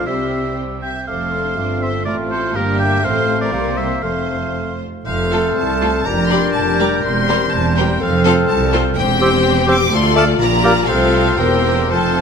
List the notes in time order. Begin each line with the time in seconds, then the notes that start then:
0.06 C2 C3 G3 C4 G4 C5 E5 E6
0.82 E5 G5
1.07 F1 F2 A3 C4 A4 C5 F5 D6
1.32 D4 C6
1.57 G1 G2 A3 C4 D4 F4 D6
1.82 C4 C5 E5 C6
2.05 A1 A2 A3 C4 F4 A#4 D5 F6
2.31 A4 C5
2.55 G1 G2 A#3 D4 G4 A#4 D6
2.79 E5 G5
3.03 A1 A2 A3 C4 F4 A4 C5 F5 C6
3.41 A#4 D5
3.51 C2 C3 G3 A#3 C4 G4 A#4 C5 C6
3.77 G3 C5 E5
4.02 F1 F2 A3 C4 F4 A4 C5 F5 C6
5.06 F1 F2 A3 C4 A4 C5 F5 F6
5.31 A3 F4 A4
5.56 C2 A5
5.81 A3 F4 A4
6.05 F1 F2 G3 D4 G4 A#4 D5 A#5 G6
6.29 G3 G4 A#4 D5 C6
6.54 F1 F2 A5
6.79 G3 G4 A#4 D5 A#5
7.03 E1 E2 C4 A#4 C5 C6
7.29 G3 G4 A#4 C5
7.53 E1 E2 A5
7.76 G3 G4 A#4 C5 G5
8.01 F1 F2 C4 A4 F5 F6
8.24 C4 F4 A4 C5 F5
8.48 C2 A5
8.73 C4 F4 A4 C5
8.97 E1 E2 C4 G4 C5 G5
9.21 C4 G4 C5 E6
9.67 C4 G4 C5 D6 E6
9.92 D2 A3 F4 A4 D5 C6
10.16 A3 A4 D5 A5 F6
10.39 A#1 A#2 G3 F4 A#4 D5 A#5
10.64 A#3 G4 D5 F6
10.88 C2 C3 A3 C4 F4 A4 C5 F5 F6
11.37 E1 E2 A#3 C4 G4 A#4 C5 G5 E6
11.89 F1 F2 A3 C4 F4 A4 C5 A5 F6